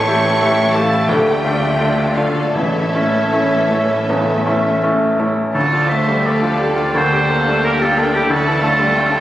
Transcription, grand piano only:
Already playing: A2
0.07 A3 E4 G4
0.41 A3 E4 G4
0.74 A3 E4 G4
1.09 D2
1.45 A3 D4 F4
1.79 A3 D4 F4
2.16 A3 D4 F4
2.55 A1
2.95 A3 C#4 E4
3.32 A3 C#4 E4
3.70 A3 C#4 E4
4.09 E2
4.46 A3 C#4 E4
4.83 A3 C#4 E4
5.19 A3 C#4 E4
5.55 D2
5.73 F4
5.92 A3
6.08 G3
6.26 A3
6.43 F4
6.60 G4
6.76 F4
6.95 D2
7.12 G4
7.30 A#3
7.47 A3
7.63 A#3
7.81 G4
7.98 A4
8.13 G4
8.29 D2
8.47 A4
8.63 A3
8.79 G3
8.95 A3
9.11 A4

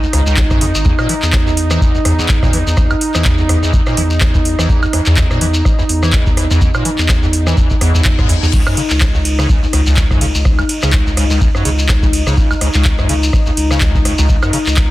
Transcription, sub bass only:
0.13 C#2
0.51 G#1
0.61 F2
0.75 G#1
0.85 E2
1.23 E2
2.05 E2
2.67 E2
2.77 E2
3.15 E2
3.97 E2
4.59 E2
4.69 E2
5.07 E2
5.89 E2
6.51 E2
6.61 E2
6.99 E2
7.81 E2
8.43 E2
8.53 C#2
8.91 C#2
9.73 C#2
10.35 C#2
10.45 C#2
10.83 C#2
11.65 C#2
12.27 C#2
12.37 C#2
12.75 C#2
13.57 C#2
14.19 C#2
14.29 C#2
14.67 C#2

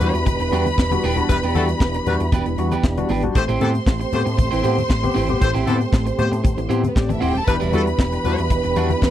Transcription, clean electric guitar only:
0.14 muted clean electric guitar stroke
0.26 muted clean electric guitar stroke
0.40 muted clean electric guitar stroke
0.53 B3 D4 G4 B4
0.66 muted clean electric guitar stroke
0.78 muted clean electric guitar stroke
0.92 muted clean electric guitar stroke
1.04 B3 D4 G4 B4
1.17 muted clean electric guitar stroke
1.30 muted clean electric guitar stroke
1.43 B3 D4 G4 B4
1.55 B3 D4 G4 B4
1.70 muted clean electric guitar stroke
1.82 muted clean electric guitar stroke
1.95 muted clean electric guitar stroke
2.21 muted clean electric guitar stroke
2.33 B3 D4 G4 B4
2.47 muted clean electric guitar stroke
2.58 muted clean electric guitar stroke
2.72 B3 D4 G4 B4
2.84 muted clean electric guitar stroke
2.98 muted clean electric guitar stroke
3.10 B3 D4 G4 B4
3.24 muted clean electric guitar stroke
3.35 muted clean electric guitar stroke
3.48 C4 E4 G4 C5
3.60 C4 E4 G4 C5
3.74 muted clean electric guitar stroke
3.86 muted clean electric guitar stroke
4.00 muted clean electric guitar stroke
4.26 muted clean electric guitar stroke
4.38 muted clean electric guitar stroke
4.51 C4 E4 G4 C5
4.63 C4 E4 G4 C5
4.77 muted clean electric guitar stroke
4.89 muted clean electric guitar stroke
5.03 muted clean electric guitar stroke
5.14 C4 E4 G4 C5
5.28 muted clean electric guitar stroke
5.40 muted clean electric guitar stroke
5.54 C4 E4 G4 C5
5.66 C4 E4 G4 C5
5.80 muted clean electric guitar stroke
5.92 muted clean electric guitar stroke
6.06 muted clean electric guitar stroke
6.32 muted clean electric guitar stroke
6.44 muted clean electric guitar stroke
6.58 muted clean electric guitar stroke
6.69 C4 E4 G4 C5
6.83 muted clean electric guitar stroke
6.96 muted clean electric guitar stroke
7.09 muted clean electric guitar stroke
7.21 C4 E4 G4 C5
7.35 muted clean electric guitar stroke
7.47 muted clean electric guitar stroke
7.60 G3 D4 E4 B4
7.72 G3 D4 E4 B4
7.86 muted clean electric guitar stroke
7.99 muted clean electric guitar stroke
8.13 muted clean electric guitar stroke
8.39 muted clean electric guitar stroke
8.51 muted clean electric guitar stroke
8.64 muted clean electric guitar stroke
8.76 G3 D4 E4 B4
8.90 muted clean electric guitar stroke
9.02 muted clean electric guitar stroke

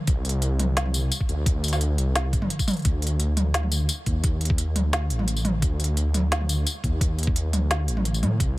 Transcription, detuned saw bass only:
0.08 C2
0.59 C2
1.29 D2
1.98 C2
2.33 G1
2.85 D2
3.37 D2
4.06 D#2
4.76 D2
5.10 A1
5.62 D2
6.14 D2
6.84 D#2
7.53 D2
7.88 A1
8.22 A2
8.40 C2

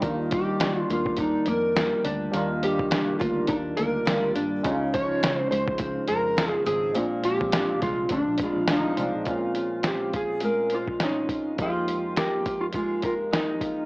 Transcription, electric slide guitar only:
0.34 G4
0.79 F4
0.93 F4
1.20 D#4
1.48 A#4
2.64 G4
3.20 F4
3.48 D#4
3.77 A#4
4.94 C#5
5.37 C5
5.51 C5
6.08 A#4
6.50 G#4
6.67 G#4
7.25 G4
7.83 F4
8.12 D4
8.43 F4
8.72 D#4
9.30 F4
9.87 G4
10.16 G#4
10.45 A#4
10.74 F4
11.04 D#4
11.62 F4
12.18 G4
12.61 F4
12.75 F4
13.06 F4
13.32 D#4

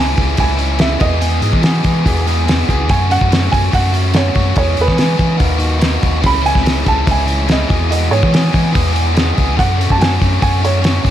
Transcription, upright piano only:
Already playing: G#5
0.40 G#5
0.81 E5
1.01 D#5
2.90 G#5
3.12 F#5
3.52 G#5
3.75 F#5
4.16 C#5
4.58 C#5
4.81 B4
6.26 B5
6.46 G#5
6.88 A5
7.11 G#5
7.52 D#5
7.91 D#5
8.11 C#5
9.59 F#5
9.92 A5
10.01 G#5
10.42 G#5
10.65 C#5

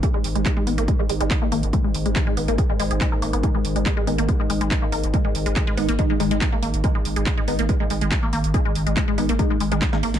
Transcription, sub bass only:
0.24 G#1
0.35 G#1
0.67 G#1
0.78 G#1
1.09 G#1
1.21 G#1
1.52 G#1
1.63 G#1
1.95 G#1
2.06 G#1
2.37 G#1
2.48 G#1
2.80 G#1
2.91 G#1
3.22 G#1
3.33 G#1
3.65 G#1
3.76 G#1
4.07 G#1
4.18 G#1
4.50 G#1
4.61 G#1
4.92 G#1
5.04 G#1
5.35 G#1
5.46 G#1
5.78 G#1
5.89 G#1
6.20 G#1
6.31 G#1
6.63 G#1
6.74 G#1
7.05 G#1
7.16 G#1
7.48 G#1
7.59 G#1
7.90 G#1
8.02 G#1
8.33 G#1
8.44 G#1
8.75 G#1
8.86 G#1
9.18 G#1
9.29 G#1
9.60 G#1
9.72 G#1
10.03 G#1
10.14 G#1

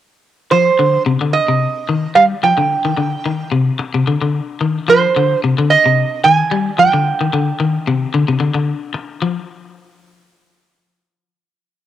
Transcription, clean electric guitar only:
0.52 F3
0.79 D3
1.06 C3
1.21 D3
1.48 C3
1.89 D#3
2.16 G3
2.43 F3
2.58 D3
2.85 D#3
2.98 D3
3.26 D#3
3.52 C3
3.79 muted clean electric guitar stroke
3.94 C3
4.07 D3
4.22 D3
4.61 D#3
4.88 F3
5.16 D3
5.44 C3
5.58 D3
5.86 C3
6.25 D#3
6.51 G3
6.78 F3
6.93 D3
7.21 D#3
7.33 D3
7.60 D#3
7.87 C3
8.14 D3
8.28 C3
8.40 D3
8.54 D3
8.94 muted clean electric guitar stroke
9.22 F3

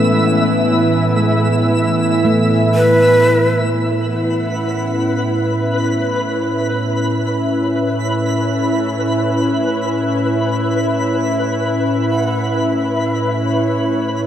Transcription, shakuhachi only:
2.75 B4
3.64 C#5
4.08 F#5
5.45 E5
5.88 C#5
7.21 B4
8.12 A4
12.11 F#5
12.54 E5
13.42 C#5

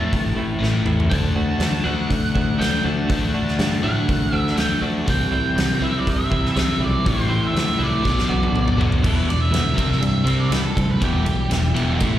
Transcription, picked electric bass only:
0.13 G1
0.35 A1
0.61 A1
0.85 A1
1.11 D2
1.35 D2
1.59 D2
1.86 D2
2.10 D2
2.35 D2
2.60 D2
2.84 D2
3.10 D2
3.59 G2
3.84 A2
4.08 C2
4.33 D2
4.57 D2
4.82 D2
5.08 C2
5.31 C2
5.55 C2
5.81 C2
6.07 C2
6.32 C2
6.56 C2
6.80 B1
7.06 A1
7.53 D2
7.79 C2
8.05 B1
8.29 B1
8.52 B1
8.77 B1
9.04 E1
9.27 E1
9.50 D2
9.77 C2
10.01 G2
10.25 C2
10.50 C2
10.77 D2
11.02 E1
11.25 B1
11.50 E1
11.75 E1
12.01 A1

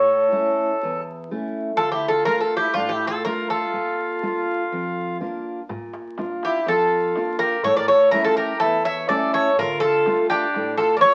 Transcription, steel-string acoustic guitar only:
Already playing: A2
0.32 A3 C#4 E4
0.83 E2
1.31 A3 C#4 E4
1.79 D3
2.27 A3 D4 F4
2.76 A2
3.26 A3 D4 F4
3.73 A#2
4.23 A#3 D4 F4
4.72 F2
5.20 A#3 D4 F4
5.69 A#2
6.18 A#3 D4 F4
6.66 F2
7.16 A#3 D4 F4
7.65 A2
8.13 A3 C#4 E4
8.63 E2
9.10 A3 C#4 E4
9.59 D3
10.06 A3 D4 F4
10.56 A2
11.04 A3 D4 F4

